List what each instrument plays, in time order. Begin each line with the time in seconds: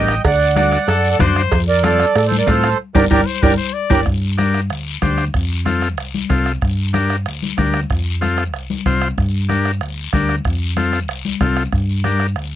Already playing: fingered electric bass A1, transistor combo organ D4 G4 A#4, accordion D#5 G5
0.08 bombo rim, short guiro
0.24 fingered electric bass D2, accordion D5 F#5, bombo low, bombo rim, cowbell, long guiro
0.56 transistor combo organ D4 F#4 A4, accordion D5 F#5, bombo rim, cowbell, high conga, short guiro
0.72 bombo rim, short guiro
0.88 fingered electric bass F#2, trumpet A4, bombo rim, cowbell, long guiro
1.11 trumpet A4
1.19 fingered electric bass F#2, transistor combo organ D4 F#4 C5, trumpet C5, bombo low, bombo rim, cowbell, high conga, low conga, short guiro
1.36 bombo rim, short guiro
1.52 fingered electric bass F2, bombo low, bombo rim, cowbell, long guiro
1.68 accordion A#4 D5
1.83 transistor combo organ C4 F4 A4, accordion A4 D5, bombo rim, cowbell, high conga, short guiro
2.00 bombo rim, short guiro
2.15 fingered electric bass A2, accordion A4 D5, bombo rim, cowbell, long guiro
2.27 accordion A4 C5
2.32 high conga
2.38 accordion A#4 D5
2.47 fingered electric bass A2, transistor combo organ C4 F4 A4, accordion A4 C5, bombo low, bombo rim, cowbell, high conga, short guiro
2.64 bombo rim, short guiro
2.95 fingered electric bass G1, transistor combo organ D4 G4 A#4, accordion G4 A#4 D5, bombo low, high conga, high timbale, long guiro
3.10 fingered electric bass G1, transistor combo organ D4 G4 A#4, accordion G4 A#4 D5, trumpet A#4, bombo low, high conga, high timbale, long guiro
3.26 trumpet C5
3.42 fingered electric bass G1, transistor combo organ D4 G4 A#4, accordion G4 A#4 D5, trumpet A#4, bombo low, high conga, high timbale, long guiro
3.57 trumpet C5
3.73 trumpet D5
3.90 fingered electric bass G1, transistor combo organ D4 G4 A#4, accordion G4 A#4 D5, bombo low, high conga, high timbale, long guiro
4.06 fingered electric bass G2, bombo low, bombo rim, long guiro
4.38 transistor combo organ D4 G4 A#4, bombo rim, high conga, short guiro
4.54 bombo rim, short guiro
4.70 fingered electric bass D2, bombo rim, long guiro
5.02 fingered electric bass D2, transistor combo organ D4 G4 C5, bombo low, bombo rim, high conga, short guiro
5.18 bombo rim, short guiro
5.34 fingered electric bass F2, bombo low, bombo rim, long guiro
5.65 transistor combo organ C4 F4 A4, bombo rim, high conga, short guiro
5.81 bombo rim, short guiro
5.98 fingered electric bass C2, bombo rim, long guiro
6.14 high conga
6.29 fingered electric bass C2, transistor combo organ C4 F4 A4, bombo low, bombo rim, high conga, short guiro
6.46 bombo rim, short guiro
6.62 fingered electric bass G2, bombo low, bombo rim, long guiro
6.93 transistor combo organ D4 G4 A#4, bombo rim, high conga, short guiro
7.10 bombo rim, short guiro
7.26 fingered electric bass D2, bombo rim, long guiro
7.43 high conga
7.57 fingered electric bass D2, transistor combo organ D4 G4 A#4, bombo low, bombo rim, high conga, short guiro
7.74 bombo rim, short guiro
7.90 fingered electric bass F2, bombo low, bombo rim, long guiro
8.21 transistor combo organ C4 F4 A4, bombo rim, high conga, short guiro
8.38 bombo rim, short guiro
8.54 fingered electric bass C2, bombo rim, long guiro
8.70 high conga
8.86 fingered electric bass C2, transistor combo organ C4 F4 C5, bombo low, bombo rim, high conga, short guiro
9.01 bombo rim, short guiro
9.18 fingered electric bass G2, bombo low, bombo rim, long guiro
9.49 transistor combo organ D4 G4 A#4, bombo rim, high conga, short guiro
9.65 bombo rim, short guiro
9.81 fingered electric bass D2, bombo rim, long guiro
10.13 fingered electric bass D2, transistor combo organ D4 G4 A#4, bombo low, bombo rim, high conga, short guiro
10.29 bombo rim, short guiro
10.45 fingered electric bass F2, bombo low, bombo rim, long guiro
10.76 transistor combo organ C4 F4 A4, bombo rim, high conga, short guiro
10.93 bombo rim, short guiro
11.08 fingered electric bass C2, bombo rim, long guiro
11.25 high conga
11.41 fingered electric bass C2, transistor combo organ C4 F4 A4, bombo low, bombo rim, high conga, short guiro
11.57 bombo rim, short guiro
11.72 fingered electric bass G2, bombo low, bombo rim, long guiro
12.04 transistor combo organ D4 G4 A#4, bombo rim, high conga, short guiro
12.20 bombo rim, short guiro
12.36 fingered electric bass D2, bombo rim, long guiro